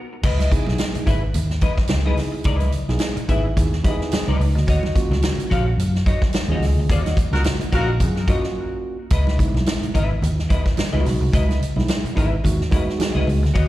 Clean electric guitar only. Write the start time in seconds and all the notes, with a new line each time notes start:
0.13 muted clean electric guitar stroke
0.23 E4 B4 D#5
0.67 muted clean electric guitar stroke
0.80 muted clean electric guitar stroke
0.95 muted clean electric guitar stroke
1.06 E4 B4 E5
1.22 muted clean electric guitar stroke
1.34 muted clean electric guitar stroke
1.61 E4 B4 D#5
1.78 muted clean electric guitar stroke
1.90 muted clean electric guitar stroke
2.06 E4 B4 D#5
2.18 muted clean electric guitar stroke
2.32 muted clean electric guitar stroke
2.45 D#4 A#4 D5
2.56 E4 B4 D#5
2.89 muted clean electric guitar stroke
3.00 muted clean electric guitar stroke
3.16 muted clean electric guitar stroke
3.28 E4 B4 E5
3.45 muted clean electric guitar stroke
3.58 muted clean electric guitar stroke
3.85 E4 B4 D#5
4.00 muted clean electric guitar stroke
4.13 muted clean electric guitar stroke
4.28 E4 B4 D#5
4.40 muted clean electric guitar stroke
4.56 muted clean electric guitar stroke
4.67 F#4 C#5 D#5
5.11 muted clean electric guitar stroke
5.22 muted clean electric guitar stroke
5.39 muted clean electric guitar stroke
5.50 F#4 C#5 F5
5.67 muted clean electric guitar stroke
5.79 muted clean electric guitar stroke
6.06 F#4 C#5 D#5
6.23 muted clean electric guitar stroke
6.36 muted clean electric guitar stroke
6.52 F#4 C#5 D#5
6.64 muted clean electric guitar stroke
6.79 muted clean electric guitar stroke
6.90 F4 C5 D#5
7.01 F#4 C#5
7.34 muted clean electric guitar stroke
7.46 muted clean electric guitar stroke
7.61 muted clean electric guitar stroke
7.72 F#4 C#5 F5
7.88 muted clean electric guitar stroke
8.01 muted clean electric guitar stroke
8.28 F#4 C#5 D#5
8.44 muted clean electric guitar stroke
9.11 E4 B4 D#5
9.55 muted clean electric guitar stroke
9.67 muted clean electric guitar stroke
9.82 muted clean electric guitar stroke
9.94 E4 B4 E5
10.10 muted clean electric guitar stroke
10.22 muted clean electric guitar stroke
10.49 E4 B4 D#5
10.64 muted clean electric guitar stroke
10.76 muted clean electric guitar stroke
10.93 E4 B4 D#5
11.05 muted clean electric guitar stroke
11.21 muted clean electric guitar stroke
11.32 E4 B4 D#5
11.77 muted clean electric guitar stroke
11.89 muted clean electric guitar stroke
12.04 muted clean electric guitar stroke
12.16 E4 B4 E5
12.33 muted clean electric guitar stroke
12.45 muted clean electric guitar stroke
12.73 E4 B4 D#5
12.88 muted clean electric guitar stroke
13.00 muted clean electric guitar stroke
13.15 E4 B4 D#5
13.27 muted clean electric guitar stroke
13.43 muted clean electric guitar stroke
13.54 F#4 C#5 D#5